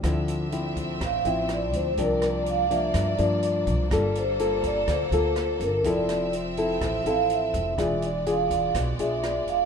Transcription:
<<
  \new Staff \with { instrumentName = "Vibraphone" } { \time 4/4 \key d \minor \tempo 4 = 124 r2 f''8 e''8 d''8 c''8 | bes'8 d''8 f''8 e''4 r4. | r8 c''4 d''8 c''4. bes'8 | d''4 r8 e''4 f''8 e''4~ |
e''8 d''8 f''4 r8 e''4 f''8 | }
  \new Staff \with { instrumentName = "Violin section" } { \time 4/4 \key d \minor << { <c' e''>1 | <bes d''>1 | <bes a'>1 | <c' e''>1 |
<gis d''>1 | } \\ { d'1~ | d'1~ | d'1 | r1 |
r1 | } >> }
  \new Staff \with { instrumentName = "Nylon-string guitar" } { \time 4/4 \key d \minor << { <f c' e'>4 <f c' e'>4 r8 <f c' e'>4. | <f bes d'>4. <f bes d'>4 <f bes d'>4. | <bes f' a'>8 r8 <bes f' a'>4. <bes f' a'>4. | <c' e' a'>4 r8 <c' e' a'>4 <c' e' a'>4. |
<d' f' gis'>8 r8 <d' f' gis'>4. <d' f' gis'>4. | } \\ { d2 a,2 | c2 g,2 | g2 d2 | f2 f2 |
e2 b,2 | } >> }
  \new Staff \with { instrumentName = "Upright bass" } { \clef bass \time 4/4 \key d \minor d,2 a,,8 a,,4 d,8 | c,2 g,8 g,4 c,8 | g,,2 d,8 d,4 g,,8 | f,,2 a,,8 a,,4 f,,8 |
e,,2 b,,8 b,,4 e,,8 | }
  \new DrumStaff \with { instrumentName = "Drums" } \drummode { \time 4/4 <hh bd ss>8 hh8 hh8 <hh bd>8 <hh bd ss>8 hh8 <hh ss>8 hh8 | <hh bd>8 <hh ss>8 hh8 hh8 <hh bd ss>8 hh8 hh8 <hh bd>8 | <hh bd ss>8 hh8 hh8 <hh bd>8 <hh bd ss>8 hh8 <hh ss>8 hh8 | <hh bd>8 <hh ss>8 hh8 hh8 <hh bd ss>8 hh8 hh8 <hh bd>8 |
<hh bd ss>8 hh8 hh8 <hh bd>8 <hh bd ss>8 hh8 <hh ss>8 hh8 | }
>>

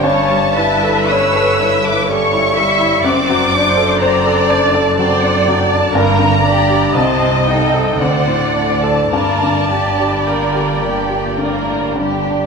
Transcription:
<<
  \new Staff \with { instrumentName = "Violin section" } { \time 3/4 \key g \minor \tempo 4 = 58 a''4 e'''8. d'''16 cis'''4 | d'''4 bes''8 a''8. fis''16 g''16 a''16 | bes''4 a''8 g''8 fis''8. a''16 | a''4 g''4. r8 | }
  \new Staff \with { instrumentName = "Viola section" } { \time 3/4 \key g \minor cis''8 b'4. a'8 e''8 | d''8 c''8 d''4 d''4 | bes'8 d''8 ees''4 d''4 | d''2~ d''8 r8 | }
  \new Staff \with { instrumentName = "Violin section" } { \time 3/4 \key g \minor <cis' cis''>8 <e' e''>8 <cis' cis''>8 <e' e''>8 <cis' cis''>8 <e' e''>8 | <c' c''>8 <d' d''>8 <c' c''>8 <d' d''>8 <c' c''>8 <d' d''>8 | <bes bes'>8 <d' g'>8 <c' c''>8 <ees' a'>8 <c' c''>8 <d' d''>8 | <bes bes'>8 <d' g'>8 <bes bes'>8 <d' g'>8 <bes bes'>8 <d' g'>8 | }
  \new Staff \with { instrumentName = "Grand piano" } { \time 3/4 \key g \minor g,16 g16 e'16 a'16 cis''16 a'16 cis''16 a'16 g16 e'16 g16 e'16 | fis,16 fis16 d'16 a'16 c''16 a'16 c''16 a'16 fis16 d'16 fis16 d'16 | g,16 d16 d'16 g'16 c,16 c16 ees'16 a'16 d,16 a,16 d'16 a'16 | g,16 d16 d'16 g'16 bes'16 g'16 bes'16 g'16 d16 d'16 d16 d'16 | }
  \new Staff \with { instrumentName = "Cello section" } { \clef bass \time 3/4 \key g \minor g,2. | fis,2. | g,4 c4 d4 | g,4 d8 bes,8 a,8 g,8 | }
  \new Staff \with { instrumentName = "Double bass section" } { \clef bass \time 3/4 \key g \minor g,,2. | fis,,2. | g,,4 c,4 d,4 | g,,2. | }
>>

